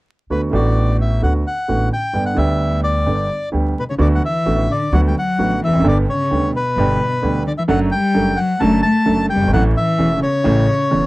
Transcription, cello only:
3.80 3.84 B2 soft
3.90 3.95 C#3 soft
4.01 4.08 D3 medium
4.16 4.23 F#3 soft
4.24 4.67 E3 medium
4.71 4.92 D3 soft
4.93 5.00 F#3 medium
5.08 5.15 G3 soft
5.16 5.59 F#3 medium
5.63 5.84 E3 medium
5.85 5.95 D3 medium
6.07 6.51 C#3 medium
6.53 7.42 B2 medium
7.46 7.51 D3 medium
7.58 7.63 E3 medium
7.69 7.79 F#3 medium
7.93 8.35 G3 medium
8.38 8.60 F#3 medium
8.61 8.83 A3 medium
8.85 9.27 A3 medium
9.31 9.52 G3 medium
9.53 9.64 F#3 medium
9.77 10.20 E3 medium
10.22 11.06 C#3 medium

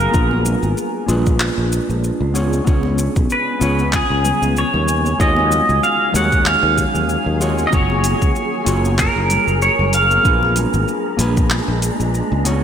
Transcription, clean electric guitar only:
0.00 0.10 F4 medium
0.00 0.11 F#4 medium
0.00 0.11 G#4 medium
0.00 0.12 C#5 medium
0.11 1.04 A#3 medium
0.11 1.04 D4 medium
0.11 1.05 F4 medium
0.11 1.06 G#4 medium
0.15 1.06 B3 medium
1.06 2.31 A#3 medium
1.06 2.31 D4 medium
1.06 2.32 F4 medium
1.06 2.32 G#4 medium
1.11 2.33 B4 medium
2.34 2.63 B3 medium
2.34 2.63 C#4 medium
2.34 2.63 F4 medium
2.34 2.63 G#4 medium
2.34 2.64 C#5 medium
2.64 3.57 B3 medium
2.64 3.57 C#4 medium
2.64 3.58 F4 medium
2.64 3.58 G#4 medium
2.64 3.59 C#5 medium
3.60 4.85 B3 medium
3.60 4.86 C#4 medium
3.60 4.86 F4 medium
3.60 4.87 G#4 medium
3.60 4.87 C#5 medium
5.18 6.10 G#3 medium
5.18 6.11 D#4 medium
5.18 6.11 F4 medium
5.18 6.11 F#4 medium
5.18 6.12 C#5 medium
6.12 7.36 G#3 medium
6.12 7.37 D#4 medium
6.12 7.38 F#4 medium
6.12 7.37 G#4 medium
6.12 7.38 C#5 medium
7.40 7.68 G#3 medium
7.40 7.69 D#4 medium
7.40 7.69 F4 medium
7.40 7.69 F#4 medium
7.40 7.69 C#5 medium
7.70 8.63 A#3 medium
7.70 8.63 F4 medium
7.70 8.64 F#4 medium
7.70 8.64 G#4 medium
7.75 8.65 C#5 medium
8.65 10.20 A#3 medium
8.65 10.21 F4 medium
8.65 10.21 F#4 medium
8.65 10.22 G#4 medium
8.69 10.22 C#5 medium
10.23 11.15 A#3 medium
10.23 11.16 D4 medium
10.23 11.16 F4 medium
10.23 11.17 G#4 medium
10.23 11.17 B4 medium
11.17 12.41 A#3 medium
11.17 12.42 D4 medium
11.17 12.42 F4 medium
11.17 12.43 G#4 medium
11.17 12.43 B4 loud
12.44 12.64 B3 medium
12.44 12.64 C#4 medium
12.44 12.64 F4 medium
12.44 12.64 G#4 medium
12.44 12.64 C#5 medium

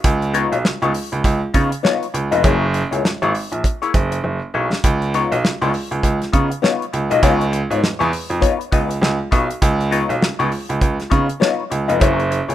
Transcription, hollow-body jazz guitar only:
0.34 0.56 B3 medium
0.34 0.56 D#4 loud
0.34 0.56 F4 medium
0.34 0.56 C#5 loud
0.65 muted hollow-body jazz guitar stroke soft
0.83 0.93 B3 medium
0.83 0.93 D#4 medium
0.83 0.93 F4 medium
0.83 0.94 C#5 medium
0.94 muted hollow-body jazz guitar stroke soft
1.12 muted hollow-body jazz guitar stroke medium
1.24 muted hollow-body jazz guitar stroke medium
1.54 1.72 B3 medium
1.54 1.71 D#4 medium
1.54 1.70 F4 medium
1.54 1.70 C#5 medium
1.71 muted hollow-body jazz guitar stroke soft
1.83 2.06 B3 medium
1.83 2.06 D#4 medium
1.83 2.06 F4 medium
1.83 2.06 C#5 medium
2.14 muted hollow-body jazz guitar stroke soft
2.31 2.43 B3 medium
2.31 2.44 D#4 medium
2.31 2.44 F4 medium
2.31 2.44 D#5 medium
2.44 2.66 A#3 medium
2.44 2.66 E4 medium
2.44 2.66 G#4 medium
2.44 2.66 C#5 medium
2.73 muted hollow-body jazz guitar stroke soft
2.91 3.03 A#3 medium
2.91 3.03 E4 medium
2.91 3.03 G#4 medium
2.91 3.03 C#5 medium
3.04 muted hollow-body jazz guitar stroke soft
3.22 3.33 A#3 medium
3.22 3.33 E4 medium
3.22 3.33 G#4 medium
3.22 3.34 C#5 medium
3.34 muted hollow-body jazz guitar stroke soft
3.52 muted hollow-body jazz guitar stroke soft
3.64 muted hollow-body jazz guitar stroke soft
3.82 3.93 A#3 medium
3.82 3.93 E4 medium
3.82 3.93 G#4 medium
3.82 3.94 C#5 medium
3.94 muted hollow-body jazz guitar stroke soft
4.12 muted hollow-body jazz guitar stroke medium
4.24 muted hollow-body jazz guitar stroke soft
4.54 4.72 A#3 medium
4.54 4.71 E4 medium
4.54 4.71 G#4 medium
4.54 4.70 C#5 medium
4.71 muted hollow-body jazz guitar stroke soft
5.14 5.36 B3 medium
5.14 5.36 D#4 medium
5.14 5.36 F4 medium
5.14 5.36 C#5 medium
5.45 muted hollow-body jazz guitar stroke soft
5.62 5.73 B3 medium
5.62 5.73 D#4 medium
5.62 5.73 F4 medium
5.62 5.73 C#5 medium
5.74 muted hollow-body jazz guitar stroke soft
5.91 muted hollow-body jazz guitar stroke medium
6.02 muted hollow-body jazz guitar stroke soft
6.32 6.51 B3 medium
6.32 6.50 D#4 medium
6.32 6.50 F4 medium
6.32 6.49 C#5 medium
6.50 muted hollow-body jazz guitar stroke medium
6.62 6.85 B3 medium
6.62 6.85 D#4 medium
6.62 6.85 F4 medium
6.62 6.85 C#5 medium
6.93 muted hollow-body jazz guitar stroke soft
7.10 7.22 B3 medium
7.10 7.22 D#4 medium
7.10 7.22 F4 medium
7.10 7.23 D#5 medium
7.23 7.45 B3 medium
7.23 7.45 D#4 loud
7.23 7.45 F4 loud
7.23 7.45 C#5 loud
7.52 muted hollow-body jazz guitar stroke soft
7.71 7.81 B3 medium
7.71 7.81 D#4 medium
7.71 7.82 F4 medium
7.71 7.82 C#5 medium
7.82 muted hollow-body jazz guitar stroke soft
7.99 8.11 B3 medium
7.99 8.11 D#4 medium
7.99 8.11 F4 medium
7.99 8.11 C#5 medium
8.12 muted hollow-body jazz guitar stroke soft
8.30 muted hollow-body jazz guitar stroke soft
8.41 8.64 B3 medium
8.41 8.59 D#4 medium
8.41 8.59 F4 medium
8.41 8.59 C#5 medium
8.60 muted hollow-body jazz guitar stroke soft
8.72 8.91 B3 medium
8.72 8.89 D#4 medium
8.72 8.88 F4 medium
8.72 8.89 D#5 medium
8.89 muted hollow-body jazz guitar stroke medium
9.01 muted hollow-body jazz guitar stroke soft
9.31 9.50 B3 medium
9.31 9.49 D#4 medium
9.31 9.49 F4 medium
9.31 9.48 C#5 medium
9.49 muted hollow-body jazz guitar stroke soft
9.91 10.13 B3 medium
9.91 10.14 D#4 medium
9.91 10.14 F4 medium
9.91 10.14 C#5 medium
10.21 muted hollow-body jazz guitar stroke soft
10.39 10.50 B3 medium
10.39 10.51 D#4 medium
10.39 10.50 F4 medium
10.39 10.51 C#5 medium
10.51 muted hollow-body jazz guitar stroke soft
10.69 muted hollow-body jazz guitar stroke soft
10.81 muted hollow-body jazz guitar stroke soft
11.10 11.29 B3 medium
11.10 11.29 D#4 medium
11.10 11.28 F4 medium
11.10 11.27 C#5 medium
11.29 muted hollow-body jazz guitar stroke soft
11.40 11.63 B3 medium
11.40 11.63 D#4 medium
11.40 11.63 F4 medium
11.40 11.63 C#5 medium
11.70 muted hollow-body jazz guitar stroke soft
11.88 11.99 B3 medium
11.88 12.00 D#4 medium
11.88 12.00 F4 medium
11.88 12.01 D#5 medium
12.00 12.22 A#3 medium
12.00 12.23 E4 medium
12.00 12.23 G#4 medium
12.00 12.23 C#5 medium
12.31 muted hollow-body jazz guitar stroke medium
12.48 12.55 A#3 soft
12.48 12.55 E4 medium
12.48 12.55 G#4 medium
12.48 12.55 C#5 medium

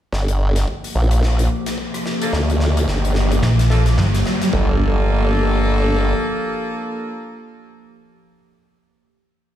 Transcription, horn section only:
2.22 2.36 A#3 medium
2.22 2.36 D4 medium
2.22 2.36 F4 medium
2.22 2.36 A4 medium
3.71 3.83 A#3 medium
3.71 3.83 D4 medium
3.71 3.83 F4 medium
3.71 3.83 A4 loud
4.53 7.49 A#3 loud
4.53 7.49 D4 medium
4.53 7.49 F4 medium
4.53 7.49 A4 loud

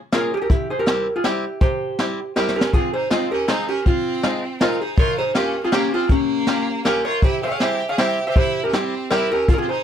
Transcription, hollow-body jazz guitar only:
0.14 0.32 F4 medium
0.14 0.32 A#4 medium
0.34 0.38 G4 medium
0.34 0.41 G#4 medium
0.34 0.37 A#4 medium
0.42 0.49 G4 medium
0.42 0.51 A#4 medium
0.50 0.68 E4 medium
0.50 0.70 G4 loud
0.70 0.78 G#4 medium
0.70 0.79 C5 medium
0.79 1.13 G4 medium
0.79 1.16 A#4 medium
1.16 1.24 F4 medium
1.16 1.26 G#4 medium
1.25 1.59 E4 medium
1.25 1.60 G4 medium
1.61 2.32 G4 medium
1.61 2.38 C5 medium
2.36 2.55 G4 medium
2.36 2.55 A#4 medium
2.56 2.72 G4 medium
2.56 2.74 A#4 medium
2.74 2.93 F4 medium
2.74 2.92 G#4 loud
2.94 3.10 G#4 medium
2.94 3.11 C5 medium
3.11 3.30 F4 medium
3.11 3.31 G#4 medium
3.32 3.48 G4 medium
3.32 3.49 A#4 medium
3.49 3.67 G#4 medium
3.49 3.68 C5 medium
3.68 3.85 G4 medium
3.68 3.86 A#4 medium
3.86 4.57 F4 medium
3.86 4.61 G#4 loud
4.61 4.79 F4 medium
4.61 4.82 A#4 medium
4.81 4.97 G#4 medium
4.81 4.98 C5 medium
4.99 5.17 A#4 medium
4.99 5.17 C#5 loud
5.18 5.34 G#4 medium
5.18 5.35 C5 medium
5.35 5.62 G4 medium
5.35 5.64 A#4 medium
5.64 5.72 F4 medium
5.64 5.73 G#4 medium
5.73 5.91 C#4 medium
5.73 5.93 G4 medium
5.94 6.09 F4 medium
5.94 6.11 G#4 medium
6.11 6.82 C#4 medium
6.11 6.84 G4 loud
6.85 7.04 G4 medium
6.85 7.04 A#4 medium
7.05 7.22 A#4 medium
7.05 7.24 C#5 medium
7.24 7.42 G4 medium
7.24 7.43 C5 loud
7.43 7.46 C5 medium
7.43 7.45 E5 medium
7.43 7.51 E5 medium
7.43 7.47 F5 medium
7.48 7.51 C5 medium
7.48 7.60 C#5 medium
7.48 7.60 F5 medium
7.60 7.87 C5 medium
7.60 7.89 E5 medium
7.89 7.98 C#5 medium
7.89 7.98 F5 medium
7.98 8.25 C5 medium
7.98 8.26 E5 medium
8.27 8.35 C5 medium
8.27 8.35 E5 medium
8.36 8.63 G4 medium
8.36 8.63 C5 loud
8.64 8.72 G4 medium
8.64 8.74 A#4 medium
8.74 9.09 E4 medium
8.74 9.10 G4 medium
9.11 9.30 G4 medium
9.11 9.30 A#4 medium
9.32 9.48 G4 medium
9.32 9.48 A#4 loud
9.48 9.53 F4 medium
9.48 9.53 G#4 loud
9.54 9.58 A#4 loud
9.58 9.68 F4 medium
9.58 9.68 G#4 loud
9.69 9.84 G#4 medium
9.69 9.84 C5 medium

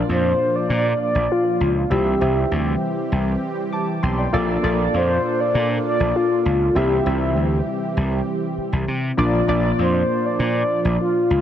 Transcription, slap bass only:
0.09 0.32 F2 medium
0.70 0.92 A#2 loud
1.15 1.26 A#1 medium
1.60 1.83 C#2 medium
1.91 2.14 C2 loud
2.21 2.44 C2 loud
2.51 2.74 D2 medium
3.12 3.35 C2 medium
4.03 4.26 B1 medium
4.33 4.56 A#1 loud
4.64 4.86 A#1 loud
4.94 5.17 F2 medium
5.55 5.77 A#2 loud
6.00 6.11 A#1 medium
6.45 6.68 C#2 medium
6.76 6.98 C2 loud
7.06 7.36 C2 loud
7.36 7.59 D2 medium
7.97 8.20 C2 loud
8.58 muted slap bass stroke soft
8.73 8.84 C2 medium
8.88 9.11 C3 medium
9.18 9.41 A#1 loud
9.48 9.71 A#1 loud
9.79 10.01 F2 medium
10.39 10.62 A#2 loud
10.85 10.96 A#1 loud
11.30 11.41 C#2 medium

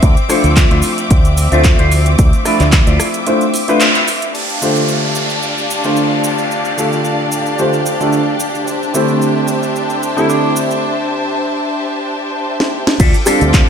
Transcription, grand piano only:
0.29 1.49 F3 medium
0.29 1.48 A3 medium
0.29 1.48 D4 medium
0.29 1.49 C5 loud
0.29 1.49 E5 medium
1.51 2.43 F3 medium
1.51 2.42 A3 medium
1.51 2.43 D4 medium
1.51 2.43 C5 medium
1.51 2.43 E5 medium
2.45 3.24 F3 medium
2.45 3.24 A3 medium
2.45 3.24 D4 medium
2.45 3.24 E5 medium
2.45 3.24 B5 medium
3.27 3.41 A3 medium
3.27 3.41 D4 medium
3.27 3.41 E4 medium
3.27 3.41 F4 medium
3.27 3.41 C5 loud
3.68 3.80 A3 medium
3.68 3.81 D4 medium
3.68 3.81 E4 medium
3.68 3.81 F4 medium
3.68 3.81 B4 loud
4.61 5.81 D3 medium
4.61 5.81 A3 medium
4.61 5.81 D4 medium
4.61 5.81 F4 medium
4.61 5.82 G4 medium
4.61 5.82 C5 medium
5.84 6.75 D3 medium
5.84 6.75 A3 medium
5.84 6.75 D4 medium
5.84 6.75 F4 medium
5.84 6.76 G4 medium
5.84 6.76 C5 medium
6.77 7.56 D3 medium
6.77 7.56 A3 medium
6.77 7.56 D4 medium
6.77 7.56 F4 medium
6.77 7.57 G4 medium
6.77 7.57 A4 medium
7.59 7.73 D3 medium
7.59 7.73 A3 medium
7.59 7.73 D4 medium
7.59 7.73 F4 medium
7.59 7.74 G4 medium
7.59 7.74 C5 medium
8.00 8.13 D3 medium
8.00 8.13 A3 medium
8.00 8.13 D4 medium
8.00 8.13 F4 medium
8.00 8.13 G4 medium
8.00 8.13 A4 medium
8.94 10.13 D3 medium
8.94 10.13 A3 medium
8.94 10.14 C4 medium
8.94 10.14 E4 medium
8.94 10.14 G4 medium
8.94 10.14 C5 medium
10.16 10.83 D3 medium
10.16 10.83 A3 medium
10.16 10.83 C4 medium
10.16 10.84 E4 medium
10.16 10.84 G4 medium
10.16 10.84 C5 medium
13.26 13.69 G3 medium
13.26 13.69 C4 medium
13.26 13.69 D4 medium
13.26 13.69 F4 medium
13.26 13.69 A4 loud

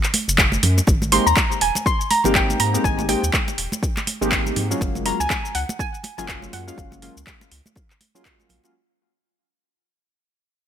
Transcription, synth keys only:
1.12 1.25 G#3 medium
1.12 1.25 A#3 medium
1.12 1.25 C4 medium
1.12 1.25 D#4 medium
1.12 1.25 G4 medium
2.25 2.71 G#3 medium
2.25 2.71 A#3 medium
2.25 2.71 C4 medium
2.25 2.71 D#4 medium
2.25 2.71 G4 loud
2.74 3.06 G#3 medium
2.74 3.06 A#3 medium
2.74 3.06 C4 medium
2.74 3.07 D#4 medium
2.74 3.07 G4 medium
3.09 3.22 G#3 medium
3.09 3.22 A#3 medium
3.09 3.22 C4 medium
3.09 3.22 D#4 medium
3.09 3.22 G4 medium
4.21 4.67 G#3 medium
4.21 4.67 A#3 medium
4.21 4.67 C4 medium
4.21 4.67 D#4 medium
4.21 4.67 G4 loud
4.71 5.03 F#3 medium
4.71 5.03 G#3 medium
4.71 5.03 A#3 medium
4.71 5.03 C#4 medium
4.71 5.03 F4 medium
5.05 5.19 F#3 medium
5.05 5.19 G#3 medium
5.05 5.19 A#3 medium
5.05 5.19 C#4 medium
5.05 5.19 F4 medium
6.18 6.64 F#3 medium
6.18 6.64 G#3 medium
6.18 6.64 A#3 medium
6.18 6.64 C#4 medium
6.18 6.64 F4 loud
6.67 7.00 F#3 medium
6.67 7.00 G#3 medium
6.67 7.00 A#3 medium
6.67 7.00 C#4 medium
6.67 7.00 F4 medium
7.02 7.15 F#3 medium
7.02 7.15 G#3 medium
7.02 7.15 A#3 medium
7.02 7.16 C#4 medium
7.02 7.16 F4 medium
8.15 8.61 F#3 medium
8.15 8.61 G#3 medium
8.15 8.61 A#3 medium
8.15 8.61 C#4 medium
8.15 8.61 F4 loud
8.64 8.73 F#3 medium
8.64 8.73 G#3 medium
8.64 8.73 A#3 medium
8.64 8.73 C#4 medium
8.64 8.73 F4 medium

